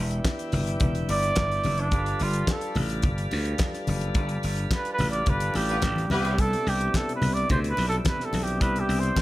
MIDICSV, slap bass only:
0, 0, Header, 1, 2, 480
1, 0, Start_track
1, 0, Tempo, 556586
1, 1660, Time_signature, 4, 2, 24, 8
1, 7950, End_track
2, 0, Start_track
2, 0, Title_t, "Slap bass"
2, 0, Program_c, 0, 36
2, 0, Note_on_c, 0, 28, 92
2, 166, Note_off_c, 0, 28, 0
2, 456, Note_on_c, 0, 31, 93
2, 645, Note_off_c, 0, 31, 0
2, 696, Note_on_c, 0, 28, 102
2, 885, Note_off_c, 0, 28, 0
2, 938, Note_on_c, 0, 31, 88
2, 1126, Note_off_c, 0, 31, 0
2, 1183, Note_on_c, 0, 31, 92
2, 1369, Note_off_c, 0, 31, 0
2, 1421, Note_on_c, 0, 30, 96
2, 1658, Note_off_c, 0, 30, 0
2, 1658, Note_on_c, 0, 31, 123
2, 1846, Note_off_c, 0, 31, 0
2, 1903, Note_on_c, 0, 31, 99
2, 2090, Note_off_c, 0, 31, 0
2, 2380, Note_on_c, 0, 33, 99
2, 2620, Note_on_c, 0, 31, 90
2, 2633, Note_off_c, 0, 33, 0
2, 2808, Note_off_c, 0, 31, 0
2, 2868, Note_on_c, 0, 38, 95
2, 3053, Note_off_c, 0, 38, 0
2, 3347, Note_on_c, 0, 30, 82
2, 3532, Note_off_c, 0, 30, 0
2, 3581, Note_on_c, 0, 31, 118
2, 3769, Note_off_c, 0, 31, 0
2, 3827, Note_on_c, 0, 31, 91
2, 4013, Note_off_c, 0, 31, 0
2, 4310, Note_on_c, 0, 33, 92
2, 4495, Note_off_c, 0, 33, 0
2, 4545, Note_on_c, 0, 31, 84
2, 4732, Note_off_c, 0, 31, 0
2, 4786, Note_on_c, 0, 33, 89
2, 4972, Note_off_c, 0, 33, 0
2, 5030, Note_on_c, 0, 33, 84
2, 5214, Note_off_c, 0, 33, 0
2, 5266, Note_on_c, 0, 36, 96
2, 5640, Note_off_c, 0, 36, 0
2, 5748, Note_on_c, 0, 36, 98
2, 5934, Note_off_c, 0, 36, 0
2, 6223, Note_on_c, 0, 36, 79
2, 6411, Note_off_c, 0, 36, 0
2, 6471, Note_on_c, 0, 38, 98
2, 6655, Note_off_c, 0, 38, 0
2, 6709, Note_on_c, 0, 35, 97
2, 6894, Note_off_c, 0, 35, 0
2, 7189, Note_on_c, 0, 35, 82
2, 7429, Note_off_c, 0, 35, 0
2, 7429, Note_on_c, 0, 36, 111
2, 7614, Note_off_c, 0, 36, 0
2, 7666, Note_on_c, 0, 36, 101
2, 7852, Note_off_c, 0, 36, 0
2, 7950, End_track
0, 0, End_of_file